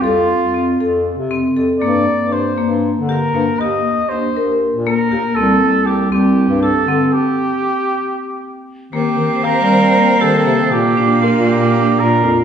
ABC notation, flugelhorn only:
X:1
M:7/8
L:1/16
Q:1/4=118
K:Eblyd
V:1 name="Flugelhorn"
F8 z6 | d4 c4 z2 B4 | e4 c4 z2 B4 | A4 G2 G4 A4 |
G12 z2 | G4 B6 A4 | G4 F2 G4 B3 z |]